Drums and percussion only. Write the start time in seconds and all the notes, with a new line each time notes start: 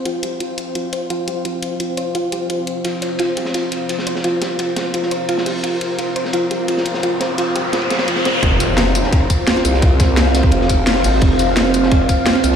0.05 closed hi-hat
0.23 closed hi-hat
0.40 closed hi-hat
0.58 closed hi-hat
0.75 closed hi-hat
0.93 closed hi-hat
1.10 closed hi-hat
1.28 closed hi-hat
1.45 closed hi-hat
1.63 closed hi-hat
1.80 closed hi-hat
1.97 closed hi-hat
2.15 closed hi-hat
2.32 closed hi-hat
2.50 closed hi-hat
2.67 closed hi-hat
2.85 closed hi-hat, ride
3.02 closed hi-hat, ride
3.19 closed hi-hat, ride
3.37 closed hi-hat, ride
3.45 snare
3.54 closed hi-hat, ride
3.72 closed hi-hat, ride
3.89 closed hi-hat, ride
3.98 snare
4.07 closed hi-hat, ride
4.15 snare
4.24 closed hi-hat, ride
4.42 snare, closed hi-hat, ride
4.59 closed hi-hat, ride
4.76 snare, closed hi-hat, ride
4.94 closed hi-hat, ride
5.02 snare
5.11 closed hi-hat, ride
5.29 closed hi-hat, ride
5.38 snare
5.46 closed hi-hat, open hi-hat
5.63 closed hi-hat, ride
5.81 closed hi-hat, ride
5.99 closed hi-hat, ride
6.16 closed hi-hat, ride
6.25 snare
6.33 closed hi-hat, ride
6.51 closed hi-hat, ride
6.68 closed hi-hat, ride
6.77 snare
6.85 closed hi-hat, ride
6.94 snare
7.03 closed hi-hat, ride
7.20 snare, closed hi-hat, ride
7.38 closed hi-hat, ride
7.56 closed hi-hat, ride
7.73 snare, closed hi-hat, ride
7.82 ride
7.90 snare, closed hi-hat, ride
7.99 snare, ride
8.08 closed hi-hat, ride
8.16 snare
8.25 snare, closed hi-hat, ride
8.43 kick, closed hi-hat, ride
8.60 closed hi-hat, ride, tambourine
8.77 snare, closed hi-hat, ride, tambourine
8.95 closed hi-hat, ride, tambourine
9.03 snare
9.13 kick, closed hi-hat, ride
9.30 kick, closed hi-hat, ride, tambourine
9.47 snare, closed hi-hat, ride
9.56 snare
9.65 closed hi-hat, ride, tambourine
9.74 snare
9.82 kick, closed hi-hat, ride
10.00 kick, snare, closed hi-hat, ride, tambourine
10.17 snare, closed hi-hat, ride, tambourine
10.34 snare, closed hi-hat, ride, tambourine
10.43 kick
10.51 closed hi-hat, ride
10.61 snare
10.69 kick, closed hi-hat, ride, tambourine
10.86 snare, closed hi-hat, ride
10.95 snare
11.04 closed hi-hat, open hi-hat, tambourine
11.21 kick, closed hi-hat, ride
11.39 closed hi-hat, ride, tambourine
11.56 snare, closed hi-hat, ride, tambourine
11.74 closed hi-hat, ride, tambourine
11.83 snare
11.91 kick, closed hi-hat, ride
12.09 kick, closed hi-hat, ride, tambourine
12.26 snare, closed hi-hat, ride
12.35 snare
12.43 closed hi-hat, ride, tambourine
12.52 snare